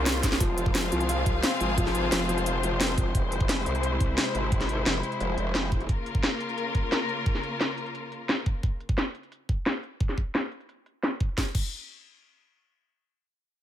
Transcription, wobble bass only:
0.00 0.39 C2 loud
0.41 0.91 F1 medium
0.92 1.42 C2 loud
1.60 2.11 G#1 medium
2.12 3.13 F1 medium
3.15 3.65 F1 medium
3.66 4.16 C2 loud
4.35 4.85 G#1 medium
4.86 5.02 F1 medium
5.21 5.36 F1 loud
5.38 5.88 F1 loud

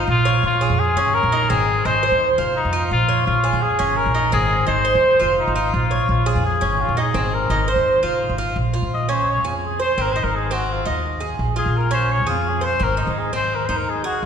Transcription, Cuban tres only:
0.00 0.24 F4 medium
0.25 0.60 C#5 medium
0.61 0.96 G#4 medium
0.97 1.31 C#4 medium
1.32 1.49 D#4 medium
1.50 1.84 C4 medium
1.85 2.02 D#4 medium
2.03 2.37 C5 medium
2.38 2.71 F4 medium
2.73 3.07 F4 medium
3.09 3.43 C#5 medium
3.44 3.78 G#4 medium
3.79 4.13 C#4 medium
4.14 4.32 D#4 medium
4.32 4.67 C4 medium
4.67 4.84 D#4 medium
4.85 5.19 C5 medium
5.20 5.54 F4 medium
5.56 5.90 F4 medium
5.91 6.25 C#5 medium
6.26 6.61 G#4 medium
6.61 6.96 C#4 medium
6.97 7.14 D#4 medium
7.14 7.49 C4 medium
7.50 7.67 D#4 medium
7.68 8.02 C5 medium
8.03 8.37 F4 medium
8.38 8.56 F4 medium
8.74 9.08 F4 medium
9.09 9.43 C#4 medium
9.45 9.79 G#4 medium
9.80 9.97 C5 medium
9.98 10.15 C4 medium
10.16 10.50 D#4 medium
10.51 10.85 C4 medium
10.85 11.20 D#4 medium
11.20 11.55 G#4 medium
11.56 11.91 F4 medium
11.91 12.26 C#4 medium
12.27 12.61 G#4 medium
12.61 12.79 C5 medium
12.80 12.97 C4 medium
12.97 13.32 D#4 medium
13.33 13.68 C4 medium
13.69 14.03 D#4 medium
14.04 14.26 G#4 medium

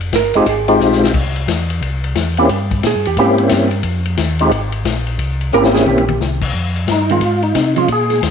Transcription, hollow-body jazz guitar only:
0.16 0.36 A#4 medium
0.37 0.48 G#4 medium
0.49 0.80 G#4 medium
2.87 3.06 G#4 medium
3.07 3.18 G4 medium
3.20 3.51 G4 medium
5.54 5.74 A#4 loud
5.74 5.87 G#4 loud
5.88 6.19 G4 medium
7.11 7.21 D#3 medium
7.11 7.21 G#3 medium
7.11 7.21 C4 medium
7.76 7.88 F3 medium
7.76 7.88 G#3 medium
7.76 7.88 C#4 medium

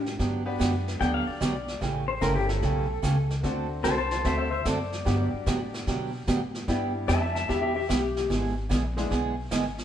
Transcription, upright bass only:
0.00 0.18 A2 medium
0.20 0.59 G2 medium
0.60 1.00 F#2 medium
1.01 1.26 D2 medium
1.28 muted upright bass stroke soft
1.41 1.81 B1 medium
1.82 2.21 A1 medium
2.22 2.62 G1 loud
2.63 3.02 B1 medium
3.03 3.43 C#2 medium
3.44 3.83 D2 medium
3.84 4.24 C2 medium
4.25 4.64 D2 medium
4.65 5.05 F#2 medium
5.06 5.31 G2 medium
5.34 muted upright bass stroke soft
5.47 5.86 A2 medium
5.87 6.27 B2 medium
6.28 6.67 A2 medium
6.68 7.07 G2 medium
7.09 7.48 F2 loud
7.50 7.89 E2 medium
7.90 8.29 B1 medium
8.30 8.69 G#1 medium
8.71 9.10 A#1 loud
9.11 9.50 B1 medium
9.52 9.84 G#1 medium

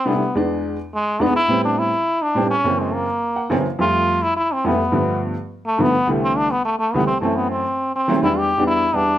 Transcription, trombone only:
0.07 0.36 B3 medium
0.94 1.24 G#3 medium
1.22 1.36 B3 medium
1.36 1.63 E4 loud
1.65 1.80 D4 medium
1.79 2.24 E4 loud
2.22 2.50 D4 medium
2.51 2.81 C#4 medium
2.80 2.96 G#3 medium
2.94 3.51 A#3 medium
3.81 4.24 F4 loud
4.23 4.36 E4 medium
4.36 4.54 E4 medium
4.52 4.68 C4 medium
4.66 5.23 B3 medium
5.66 5.83 A3 medium
5.82 6.09 B3 medium
6.23 6.39 C4 medium
6.37 6.52 D4 medium
6.51 6.64 B3 medium
6.65 6.79 A3 medium
6.79 6.95 A3 medium
6.94 7.06 B3 medium
7.07 7.20 C4 medium
7.21 7.38 A3 medium
7.36 7.51 B3 medium
7.51 7.91 C4 medium
7.96 8.22 C4 medium
8.23 8.40 E4 medium
8.38 8.66 G4 medium
8.67 8.97 E4 medium
8.95 9.18 D4 medium

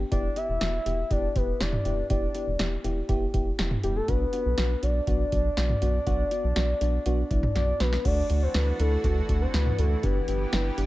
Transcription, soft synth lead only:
0.12 0.38 D5 loud
0.37 1.12 E5 loud
1.11 1.37 D5 loud
1.36 1.60 B4 medium
1.60 2.07 D5 loud
2.10 2.80 D5 medium
3.84 3.95 G4 medium
3.96 4.07 A4 medium
4.08 4.84 B4 loud
4.83 7.55 D5 loud
7.56 7.82 D5 loud
7.80 8.07 B4 loud
8.05 8.44 D5 loud
8.42 8.54 C5 medium
8.55 8.81 B4 loud
8.80 9.04 A4 medium
9.04 9.43 A4 medium
9.41 9.55 C5 medium
9.54 9.80 B4 medium
9.79 10.05 A4 medium
10.03 10.86 B4 medium

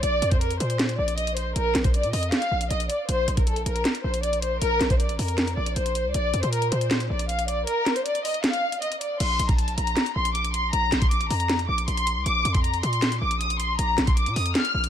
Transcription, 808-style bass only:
0.03 0.21 A#1 loud
0.22 0.59 F2 loud
0.60 0.97 A#2 loud
0.99 1.54 A#1 loud
1.56 1.74 A#1 loud
1.75 2.05 A#1 loud
2.04 2.13 A#2 loud
2.13 2.32 F2 loud
2.51 2.70 A#1 loud
2.71 2.89 A#1 loud
3.09 3.27 A#1 loud
3.28 3.64 A#1 loud
3.66 3.84 A#1 loud
4.04 4.59 A#1 loud
4.62 4.80 A#1 loud
4.81 5.11 A#1 loud
5.09 5.18 A1 loud
5.19 5.56 F2 loud
5.57 5.75 A#1 loud
5.76 6.06 A#1 loud
6.05 6.14 C2 loud
6.15 6.33 A#1 loud
6.34 6.43 F2 loud
6.43 6.71 A#2 loud
6.72 7.09 A#2 loud
7.10 7.65 A#1 loud
9.20 9.39 A#1 loud
9.39 9.76 A#1 loud
9.78 9.96 A#1 loud
10.16 10.71 A#1 loud
10.73 10.91 A#1 loud
10.92 11.22 A#1 loud
11.21 11.30 A1 loud
11.30 11.67 F2 loud
11.69 11.87 A#1 loud
11.88 12.18 A#1 loud
12.16 12.25 C2 loud
12.26 12.44 A#1 loud
12.45 12.82 F2 loud
12.83 13.20 A#2 loud
13.21 13.76 A#1 loud
13.79 13.97 A#1 loud
13.98 14.28 A#1 loud
14.27 14.36 A#2 loud
14.36 14.54 F2 loud
14.74 14.89 A#1 loud

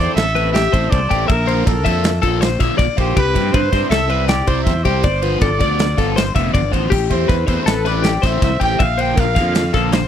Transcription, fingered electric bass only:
0.16 0.67 A1 medium
0.73 0.90 A1 medium
0.92 1.09 C2 loud
1.11 1.28 A1 medium
1.29 1.63 A#1 loud
1.67 1.86 A#1 loud
1.86 2.19 F2 loud
2.23 2.56 A#1 medium
2.60 2.69 A#1 medium
2.79 2.87 A#1 loud
2.98 3.14 A#1 medium
3.17 3.33 C2 loud
3.35 3.52 G2 medium
3.54 3.71 G2 loud
3.73 3.81 G2 loud
3.90 4.41 C2 medium
4.48 4.64 C2 medium
4.66 4.83 E2 loud
4.85 5.02 C2 medium
5.04 5.37 G1 loud
5.41 5.62 G1 loud
5.60 5.94 D2 medium
5.98 6.31 G1 medium
6.35 6.52 F1 medium
6.54 6.71 G1 medium
6.73 6.90 A1 medium
6.92 7.08 A1 loud
7.11 7.27 E2 medium
7.29 7.46 E2 loud
7.48 7.57 E2 medium
7.66 8.17 A1 medium
8.23 8.40 A1 medium
8.42 8.59 C2 loud
8.61 8.78 A1 medium
8.80 9.13 A#1 loud
9.17 9.38 A#1 loud
9.36 9.70 F2 loud
9.74 10.08 A#1 medium

